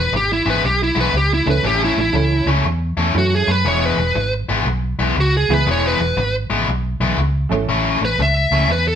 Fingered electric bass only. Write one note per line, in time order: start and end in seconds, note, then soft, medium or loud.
0.12 0.39 G#1 medium
0.46 0.60 G#1 medium
0.63 0.90 B1 medium
0.96 1.10 B1 medium
1.13 1.40 C#2 medium
1.46 1.61 C#2 medium
1.63 1.90 A1 medium
1.97 2.11 A1 medium
2.14 2.41 C#2 medium
2.46 2.61 C#2 medium
2.64 2.91 E2 medium
2.97 3.11 E2 medium
3.15 3.42 F#2 medium
3.47 3.62 F#2 medium
3.65 3.92 E1 medium
3.97 4.12 E1 medium
4.16 4.43 G#1 medium
4.49 4.63 G#1 medium
4.65 4.93 B1 medium
4.99 5.13 B1 medium
5.16 5.44 C#2 medium
5.49 5.63 C#2 medium
5.67 5.94 E1 loud
5.99 6.14 E1 medium
6.17 6.44 G#1 medium
6.50 6.64 G#1 medium
6.67 6.95 B1 medium
7.00 7.15 B1 medium
7.17 7.45 C#2 medium
7.50 7.65 G#1 medium
7.68 7.95 A1 medium
8.01 8.15 A1 medium
8.18 8.45 C#2 medium
8.51 8.65 C#2 medium
8.68 8.95 E2 medium